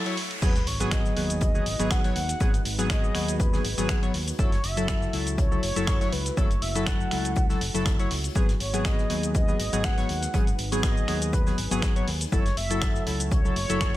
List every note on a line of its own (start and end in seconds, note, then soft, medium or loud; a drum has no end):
0.00 0.38 A3 medium
0.00 0.38 E4 medium
0.00 0.38 C#5 medium
0.00 0.40 G#5 medium
0.00 riser medium
0.06 0.15 F#3 medium
0.06 0.15 E4 medium
0.06 0.15 C#5 loud
0.06 closed hi-hat medium
0.17 open hi-hat loud
0.31 closed hi-hat medium
0.42 0.59 G#1 loud
0.42 0.53 F#3 loud
0.42 4.35 G#3 medium
0.42 0.53 B3 medium
0.42 4.35 D#4 medium
0.42 10.30 F#4 medium
0.42 0.53 G#4 loud
0.42 0.69 B4 medium
0.42 4.35 B4 medium
0.42 kick loud
0.42 closed hi-hat medium
0.42 crash loud
0.42 sub drop medium
0.42 cabasa medium
0.56 snare medium
0.56 closed hi-hat medium
0.56 cabasa soft
0.67 1.10 G#1 medium
0.67 0.93 C#5 medium
0.67 closed hi-hat medium
0.67 open hi-hat loud
0.80 1.14 F#3 loud
0.80 1.14 B3 medium
0.80 1.14 G#4 loud
0.80 closed hi-hat medium
0.80 cabasa medium
0.91 1.41 D#5 loud
0.91 finger snap loud
0.91 kick loud
0.91 snare loud
0.91 closed hi-hat medium
0.91 cabasa medium
1.05 snare soft
1.05 cabasa soft
1.16 1.60 D#2 medium
1.16 1.51 F#3 medium
1.16 1.52 B3 medium
1.16 1.52 G#4 medium
1.16 closed hi-hat medium
1.16 open hi-hat loud
1.30 closed hi-hat medium
1.30 cabasa medium
1.41 1.93 D#5 loud
1.41 kick loud
1.41 closed hi-hat medium
1.41 cabasa medium
1.55 1.64 F#3 medium
1.55 1.64 B3 medium
1.55 1.64 G#4 medium
1.55 cabasa soft
1.66 1.75 G#1 medium
1.66 closed hi-hat medium
1.66 open hi-hat loud
1.79 2.10 G#1 medium
1.79 2.01 F#3 medium
1.79 2.01 B3 medium
1.79 2.01 G#4 loud
1.79 closed hi-hat medium
1.79 cabasa medium
1.91 2.15 F#5 loud
1.91 finger snap loud
1.91 kick loud
1.91 snare loud
1.91 closed hi-hat medium
1.91 cabasa medium
2.04 2.14 F#3 medium
2.04 2.14 B3 medium
2.04 2.14 C#5 loud
2.04 snare medium
2.04 closed hi-hat medium
2.04 cabasa soft
2.16 2.33 D#2 medium
2.16 2.62 F#5 loud
2.16 closed hi-hat medium
2.16 open hi-hat loud
2.29 snare soft
2.29 closed hi-hat medium
2.29 cabasa medium
2.40 2.58 G#1 loud
2.40 2.51 F#3 medium
2.40 2.52 B3 medium
2.40 2.52 G#4 loud
2.40 kick loud
2.40 closed hi-hat medium
2.40 cabasa medium
2.54 closed hi-hat soft
2.54 closed hi-hat medium
2.54 cabasa soft
2.65 3.09 G#1 medium
2.65 closed hi-hat medium
2.65 open hi-hat loud
2.79 3.12 F#3 medium
2.79 3.12 B3 medium
2.79 3.12 G#4 loud
2.79 closed hi-hat medium
2.79 cabasa medium
2.90 3.41 D#5 loud
2.90 finger snap loud
2.90 kick loud
2.90 snare loud
2.90 closed hi-hat medium
2.90 cabasa medium
3.04 cabasa soft
3.15 3.58 D#2 medium
3.15 3.50 F#3 medium
3.15 3.50 B3 medium
3.15 3.50 G#4 medium
3.15 finger snap medium
3.15 closed hi-hat medium
3.15 open hi-hat loud
3.28 closed hi-hat medium
3.28 cabasa medium
3.40 3.89 B4 loud
3.40 kick loud
3.40 closed hi-hat medium
3.40 cabasa medium
3.53 3.62 F#3 medium
3.53 3.62 B3 medium
3.53 3.63 G#4 medium
3.53 snare medium
3.53 cabasa soft
3.65 3.73 G#1 medium
3.65 closed hi-hat medium
3.65 open hi-hat loud
3.78 4.08 G#1 medium
3.78 3.99 F#3 loud
3.78 4.00 B3 medium
3.78 4.00 G#4 loud
3.78 closed hi-hat soft
3.78 closed hi-hat medium
3.78 cabasa medium
3.89 finger snap loud
3.89 kick loud
3.89 snare loud
3.89 closed hi-hat medium
3.89 cabasa medium
4.03 4.12 F#3 medium
4.03 4.12 B3 medium
4.03 4.12 C#5 loud
4.03 closed hi-hat medium
4.03 cabasa soft
4.13 4.31 D#2 medium
4.13 snare medium
4.13 open hi-hat loud
4.13 open hi-hat medium
4.28 closed hi-hat medium
4.28 cabasa medium
4.39 4.56 F#1 loud
4.39 4.50 F#3 medium
4.39 8.32 A3 medium
4.39 8.32 E4 medium
4.39 4.50 E4 medium
4.39 4.50 A4 loud
4.39 8.32 C#5 medium
4.39 4.65 C#5 loud
4.39 kick loud
4.39 closed hi-hat medium
4.39 cabasa medium
4.52 snare medium
4.52 closed hi-hat medium
4.52 cabasa soft
4.64 5.07 F#1 medium
4.64 5.13 E5 loud
4.64 closed hi-hat medium
4.64 open hi-hat loud
4.77 5.11 F#3 medium
4.77 5.11 E4 medium
4.77 5.11 A4 loud
4.77 closed hi-hat medium
4.77 cabasa medium
4.88 finger snap loud
4.88 kick loud
4.88 snare loud
4.88 closed hi-hat medium
4.88 cabasa medium
5.02 snare soft
5.02 cabasa soft
5.13 5.57 C#2 medium
5.13 5.48 F#3 medium
5.13 5.48 E4 medium
5.13 5.49 A4 medium
5.13 closed hi-hat medium
5.13 open hi-hat loud
5.27 closed hi-hat medium
5.27 cabasa medium
5.38 5.61 C#5 loud
5.38 kick loud
5.38 closed hi-hat medium
5.38 cabasa medium
5.51 5.61 F#3 medium
5.51 5.61 E4 medium
5.51 5.61 A4 medium
5.51 cabasa soft
5.63 5.72 F#1 medium
5.63 6.14 C#5 loud
5.63 closed hi-hat medium
5.63 open hi-hat loud
5.76 6.06 F#1 medium
5.76 5.98 F#3 loud
5.76 5.98 E4 medium
5.76 5.98 A4 loud
5.76 closed hi-hat medium
5.76 cabasa medium
5.87 finger snap loud
5.87 kick loud
5.87 snare loud
5.87 closed hi-hat medium
5.87 cabasa medium
6.01 6.10 F#3 medium
6.01 6.10 E4 medium
6.01 6.11 C#5 loud
6.01 snare medium
6.01 closed hi-hat medium
6.01 cabasa soft
6.12 6.30 C#2 medium
6.12 6.39 B4 medium
6.12 closed hi-hat medium
6.12 open hi-hat loud
6.26 snare soft
6.26 closed hi-hat medium
6.26 cabasa medium
6.37 6.54 F#1 loud
6.37 6.48 F#3 loud
6.37 6.48 E4 medium
6.37 6.48 A4 loud
6.37 6.64 C#5 loud
6.37 kick loud
6.37 closed hi-hat medium
6.37 cabasa medium
6.51 closed hi-hat medium
6.51 closed hi-hat soft
6.51 cabasa soft
6.62 7.05 F#1 medium
6.62 6.88 E5 loud
6.62 closed hi-hat medium
6.62 open hi-hat loud
6.75 7.09 F#3 medium
6.75 7.09 E4 medium
6.75 7.09 A4 loud
6.75 closed hi-hat medium
6.75 cabasa medium
6.87 7.86 F#5 loud
6.87 finger snap loud
6.87 kick loud
6.87 snare loud
6.87 closed hi-hat loud
6.87 cabasa medium
7.01 cabasa soft
7.11 7.55 C#2 medium
7.11 7.47 F#3 medium
7.11 7.47 E4 medium
7.11 7.47 A4 medium
7.11 finger snap medium
7.11 closed hi-hat medium
7.11 open hi-hat loud
7.25 closed hi-hat medium
7.25 cabasa medium
7.36 kick loud
7.36 closed hi-hat medium
7.36 cabasa medium
7.50 7.59 F#3 medium
7.50 7.59 E4 medium
7.50 7.59 A4 medium
7.50 snare medium
7.50 cabasa soft
7.61 7.70 F#1 medium
7.61 closed hi-hat medium
7.61 open hi-hat loud
7.74 8.05 F#1 medium
7.74 7.96 F#3 medium
7.74 7.96 E4 medium
7.74 7.96 A4 loud
7.74 closed hi-hat medium
7.74 closed hi-hat soft
7.74 cabasa medium
7.86 finger snap loud
7.86 kick loud
7.86 snare loud
7.86 closed hi-hat medium
7.86 cabasa medium
7.99 8.09 F#3 loud
7.99 8.09 E4 medium
7.99 8.09 C#5 loud
7.99 closed hi-hat medium
7.99 cabasa soft
8.10 8.28 C#2 medium
8.10 snare medium
8.10 open hi-hat loud
8.10 open hi-hat medium
8.24 closed hi-hat medium
8.24 cabasa medium
8.35 8.53 G#1 loud
8.35 8.46 F#3 loud
8.35 12.28 G#3 medium
8.35 8.47 B3 medium
8.35 12.28 D#4 medium
8.35 8.47 G#4 loud
8.35 8.47 B4 medium
8.35 12.28 B4 medium
8.35 kick loud
8.35 closed hi-hat medium
8.35 cabasa medium
8.49 snare medium
8.49 closed hi-hat soft
8.49 cabasa soft
8.60 9.04 G#1 medium
8.60 8.83 C#5 medium
8.60 closed hi-hat medium
8.60 open hi-hat loud
8.74 9.07 F#3 loud
8.74 9.07 B3 medium
8.74 9.07 G#4 loud
8.74 closed hi-hat medium
8.74 cabasa medium
8.85 9.31 D#5 loud
8.85 finger snap loud
8.85 kick loud
8.85 snare loud
8.85 closed hi-hat medium
8.85 cabasa medium
8.99 snare soft
8.99 cabasa soft
9.10 9.53 D#2 medium
9.10 9.45 F#3 medium
9.10 9.45 B3 medium
9.10 9.45 G#4 medium
9.10 closed hi-hat medium
9.10 open hi-hat loud
9.23 closed hi-hat medium
9.23 cabasa medium
9.35 9.86 D#5 loud
9.35 kick loud
9.35 closed hi-hat medium
9.35 cabasa medium
9.48 9.57 F#3 medium
9.48 9.57 B3 medium
9.48 9.58 G#4 medium
9.48 cabasa soft
9.60 9.68 G#1 medium
9.60 closed hi-hat medium
9.60 open hi-hat loud
9.73 10.03 G#1 medium
9.73 9.94 F#3 loud
9.73 9.95 B3 medium
9.73 9.95 G#4 loud
9.73 closed hi-hat medium
9.73 cabasa medium
9.84 10.09 F#5 loud
9.84 finger snap loud
9.84 kick loud
9.84 snare loud
9.84 closed hi-hat medium
9.84 cabasa medium
9.98 10.07 F#3 medium
9.98 10.07 B3 medium
9.98 10.07 C#5 loud
9.98 snare medium
9.98 closed hi-hat medium
9.98 cabasa soft
10.09 10.26 D#2 loud
10.09 10.55 F#5 loud
10.09 closed hi-hat medium
10.09 open hi-hat loud
10.23 snare soft
10.23 closed hi-hat medium
10.23 cabasa medium
10.34 10.51 G#1 loud
10.34 10.45 F#3 loud
10.34 10.45 B3 medium
10.34 12.30 G#4 medium
10.34 10.45 G#4 loud
10.34 kick loud
10.34 closed hi-hat loud
10.34 cabasa medium
10.47 closed hi-hat soft
10.47 closed hi-hat medium
10.47 cabasa soft
10.59 11.02 G#1 medium
10.59 closed hi-hat medium
10.59 open hi-hat loud
10.72 11.06 F#3 medium
10.72 11.06 B3 medium
10.72 11.06 G#4 loud
10.72 closed hi-hat medium
10.72 cabasa medium
10.83 11.35 D#5 loud
10.83 finger snap loud
10.83 kick loud
10.83 snare loud
10.83 closed hi-hat medium
10.83 cabasa medium
10.97 cabasa soft
11.08 11.52 D#2 medium
11.08 11.43 F#3 medium
11.08 11.43 B3 medium
11.08 11.44 G#4 medium
11.08 finger snap medium
11.08 closed hi-hat medium
11.08 open hi-hat loud
11.22 closed hi-hat medium
11.22 cabasa medium
11.33 11.83 B4 loud
11.33 kick loud
11.33 closed hi-hat medium
11.33 cabasa medium
11.46 11.56 F#3 medium
11.46 11.56 B3 medium
11.46 11.56 G#4 medium
11.46 snare medium
11.46 cabasa soft
11.58 11.67 G#1 medium
11.58 closed hi-hat medium
11.58 open hi-hat loud
11.71 12.01 G#1 medium
11.71 11.93 F#3 loud
11.71 11.93 B3 medium
11.71 11.93 G#4 loud
11.71 closed hi-hat soft
11.71 closed hi-hat medium
11.71 cabasa medium
11.82 finger snap loud
11.82 kick loud
11.82 snare loud
11.82 closed hi-hat medium
11.82 cabasa medium
11.96 12.05 F#3 loud
11.96 12.05 B3 medium
11.96 12.06 C#5 loud
11.96 closed hi-hat medium
11.96 cabasa soft
12.07 12.25 D#2 loud
12.07 snare medium
12.07 open hi-hat medium
12.07 open hi-hat loud
12.21 closed hi-hat medium
12.21 cabasa medium
12.32 12.49 F#1 loud
12.32 12.43 F#3 loud
12.32 13.97 A3 medium
12.32 12.43 E4 medium
12.32 13.97 E4 medium
12.32 13.97 F#4 medium
12.32 12.43 A4 loud
12.32 12.55 C#5 loud
12.32 13.97 C#5 medium
12.32 kick loud
12.32 closed hi-hat medium
12.32 cabasa medium
12.46 snare medium
12.46 closed hi-hat medium
12.46 cabasa soft
12.57 13.00 F#1 medium
12.57 13.03 E5 loud
12.57 closed hi-hat medium
12.57 open hi-hat loud
12.70 13.04 F#3 medium
12.70 13.04 E4 medium
12.70 13.04 A4 loud
12.70 closed hi-hat medium
12.70 cabasa medium
12.82 finger snap loud
12.82 kick loud
12.82 snare loud
12.82 closed hi-hat medium
12.82 cabasa medium
12.95 snare soft
12.95 cabasa soft
13.06 13.50 C#2 medium
13.06 13.42 F#3 medium
13.06 13.42 E4 medium
13.06 13.42 A4 medium
13.06 closed hi-hat medium
13.06 open hi-hat loud
13.20 closed hi-hat medium
13.20 cabasa medium
13.31 13.55 C#5 loud
13.31 kick loud
13.31 closed hi-hat loud
13.31 cabasa medium
13.45 13.54 F#3 medium
13.45 13.54 E4 medium
13.45 13.54 A4 medium
13.45 cabasa soft
13.56 13.65 F#1 medium
13.56 13.97 C#5 loud
13.56 closed hi-hat medium
13.56 open hi-hat loud
13.69 13.97 F#1 medium
13.69 13.91 F#3 loud
13.69 13.91 E4 medium
13.69 13.91 A4 loud
13.69 closed hi-hat medium
13.69 cabasa medium
13.81 finger snap loud
13.81 kick loud
13.81 snare loud
13.81 closed hi-hat medium
13.81 cabasa medium